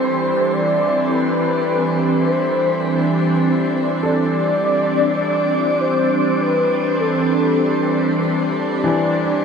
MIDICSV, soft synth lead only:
0, 0, Header, 1, 2, 480
1, 0, Start_track
1, 0, Key_signature, 0, "major"
1, 0, Tempo, 1176471
1, 1419, Time_signature, 4, 2, 24, 8
1, 3854, End_track
2, 0, Start_track
2, 0, Title_t, "Soft synth lead"
2, 0, Program_c, 0, 80
2, 0, Note_on_c, 0, 72, 94
2, 214, Note_on_c, 0, 74, 115
2, 220, Note_off_c, 0, 72, 0
2, 454, Note_on_c, 0, 71, 109
2, 460, Note_off_c, 0, 74, 0
2, 938, Note_on_c, 0, 72, 87
2, 944, Note_off_c, 0, 71, 0
2, 1298, Note_off_c, 0, 72, 0
2, 1649, Note_on_c, 0, 74, 109
2, 2357, Note_off_c, 0, 74, 0
2, 2370, Note_on_c, 0, 72, 95
2, 2613, Note_on_c, 0, 71, 89
2, 2619, Note_off_c, 0, 72, 0
2, 2856, Note_on_c, 0, 69, 76
2, 2862, Note_off_c, 0, 71, 0
2, 3217, Note_off_c, 0, 69, 0
2, 3578, Note_on_c, 0, 74, 97
2, 3854, Note_off_c, 0, 74, 0
2, 3854, End_track
0, 0, End_of_file